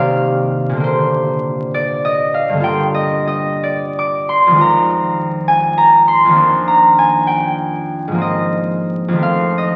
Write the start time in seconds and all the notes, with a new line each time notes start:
Already playing: C3 D#3 A#3 G4 D5 D#5 F5 G5
0.69 A#2 D3
0.77 A#3 G4
0.84 C5
1.74 D5
2.05 D#5
2.34 F5
2.49 G2 D3
2.57 A#3 F4
2.64 G5
2.94 D#5
3.27 D#5
3.63 D5
3.99 D6
4.29 C6
4.47 F2 D#3
4.54 G#3 F4
4.61 A#5
5.48 G#5
5.78 A#5
6.08 C6
6.25 F2 D#3
6.32 A#3 D4
6.68 A#5
6.98 G#5
7.27 G5
8.08 G#2 F3
8.14 A#3 C4
8.21 D#5
9.08 F2 D#3
9.15 A3 C4
9.23 F5
9.58 D#5